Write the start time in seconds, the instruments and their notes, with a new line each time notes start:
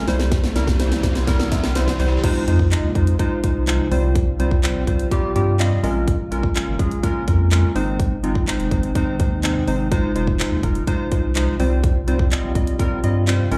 Already playing: riser
0.08 sub bass C2, ambient pad C3 E3 G3 E4, synth keys G3 E4 C5, vibraphone C4, snare, open hi-hat
0.20 vibraphone G4, snare
0.32 vibraphone G3, kick, snare, closed hi-hat
0.44 vibraphone E4, snare
0.56 sub bass C2, synth keys G3 E4 A#4, vibraphone C4, snare, closed hi-hat
0.67 vibraphone G4, kick, snare
0.80 synth keys G3 E4 C5, snare, closed hi-hat
0.92 snare, closed hi-hat
1.03 sub bass C2, synth keys G3 E4 C5, vibraphone G4, kick, snare, closed hi-hat
1.15 vibraphone C6, snare, closed hi-hat
1.27 synth keys G3 E4 A#4, vibraphone G5, kick, snare, closed hi-hat
1.39 vibraphone E6, snare
1.51 sub bass C2, synth keys G3 E4 A#4 E5, vibraphone C6, kick, snare, closed hi-hat
1.64 synth keys G5, vibraphone F6, snare
1.75 synth keys G3 E4 C5 C6, vibraphone G3, snare, closed hi-hat
1.88 vibraphone E4, snare
1.99 sub bass C2, synth keys G3 E4 C5, vibraphone C4, open hi-hat
2.11 vibraphone G4
2.24 ambient pad C3 F3 G#3 D#4, synth keys G#3 D#4 F4 C5, kick, closed hi-hat, crash
2.48 sub bass F2, synth keys G#3 D#4 F4 C5, closed hi-hat
2.59 kick
2.71 synth keys G#3 D#4 F4 D#5, clap, closed hi-hat
2.84 sub bass D#2
2.95 sub bass F2, synth keys G#3 D#4 F4 C5, kick, closed hi-hat
3.07 closed hi-hat
3.19 synth keys G#3 D#4 F4 C5, kick, closed hi-hat
3.43 sub bass C2, synth keys G#3 D#4 F4 C5, kick, closed hi-hat
3.67 synth keys G#3 D#4 F4 C5, clap, closed hi-hat
3.91 sub bass C2, synth keys G3 C4 F4 C5, ambient pad G3 F4, open hi-hat
4.15 kick, closed hi-hat
4.39 sub bass C2, synth keys G3 C4 F4 C5, closed hi-hat
4.51 kick
4.63 synth keys G3 C4 F4 C5, clap, closed hi-hat
4.76 sub bass A#1
4.87 sub bass C2, synth keys G3 C4 F4 C5, kick, closed hi-hat
4.99 closed hi-hat
5.11 synth keys G3 C4 F4 G4, kick, closed hi-hat
5.35 sub bass G2, synth keys G3 C4 F4 G4 G5, closed hi-hat
5.59 synth keys G3 C4 F4 D#5 F5, clap, closed hi-hat
5.83 sub bass A#1, ambient pad C#3 G#3 A#3, synth keys G#3 C#4 F4 A#4 D#5, open hi-hat
6.08 kick, closed hi-hat
6.31 sub bass A#1, synth keys G#3 C#4 F4 A#4, closed hi-hat
6.43 kick
6.55 synth keys G#3 C#4 F4 A#4, clap, closed hi-hat
6.67 sub bass G#1
6.79 sub bass A#1, synth keys G#3 C#4 F4 G#4, kick, closed hi-hat
6.91 closed hi-hat
7.03 synth keys G#3 C#4 F4 A#4, kick, closed hi-hat
7.27 sub bass F2, synth keys G#3 C#4 F4 A#4, kick, closed hi-hat
7.51 synth keys G#3 C#4 F4 A#4, clap, closed hi-hat
7.75 sub bass G#1, ambient pad C3 D#3 G#3 D#4, synth keys G#3 C4 D#4 C5, open hi-hat
8.00 kick, closed hi-hat
8.23 sub bass G#1, synth keys G#3 C4 D#4 F4, closed hi-hat
8.35 kick
8.48 synth keys G#3 C4 D#4 C5, clap, closed hi-hat
8.60 sub bass F1, closed hi-hat
8.71 sub bass G#1, synth keys G#3 C4 D#4 C5, kick, closed hi-hat
8.83 closed hi-hat
8.95 synth keys G#3 C4 D#4 C5, kick, closed hi-hat
9.20 sub bass D#2, synth keys G#3 C4 D#4 C5, kick, closed hi-hat
9.43 synth keys G#3 C4 D#4 C5, clap, closed hi-hat
9.67 sub bass G#1, synth keys G#3 C4 D#4 C5, open hi-hat
9.91 ambient pad F3, synth keys G#3 D#4 F4 C5, kick, closed hi-hat
10.15 sub bass F1, synth keys G#3 D#4 F4 C5, closed hi-hat
10.27 kick
10.39 synth keys G#3 D#4 F4 C5, clap, closed hi-hat
10.52 sub bass D#2
10.63 sub bass F1, synth keys G#3 D#4 F4 A#4, kick, closed hi-hat
10.75 closed hi-hat
10.87 synth keys G#3 D#4 F4 C5, kick, closed hi-hat
11.11 sub bass C2, synth keys G#3 D#4 F4 C5, kick, closed hi-hat
11.35 synth keys G#3 D#4 F4 C5, clap, closed hi-hat
11.59 sub bass C2, ambient pad C3 G3 F4, synth keys G3 C4 F4 C5, open hi-hat
11.84 kick, closed hi-hat
12.07 sub bass C2, synth keys G3 C4 F4 C5, closed hi-hat
12.19 kick
12.31 synth keys G3 C4 F4 D#5, clap, closed hi-hat
12.44 sub bass A#1
12.55 sub bass C2, synth keys G3 C4 F4 D#5, kick, closed hi-hat
12.67 closed hi-hat
12.79 synth keys G3 C4 F4 A#4, kick, closed hi-hat
13.04 sub bass G2, synth keys G3 C4 F4 D#5, closed hi-hat
13.27 synth keys G3 C4 F4 C5, clap, closed hi-hat
13.51 sub bass A#1, ambient pad C#3 G#3 A#3, synth keys G#3 C#4 F4 A#4, open hi-hat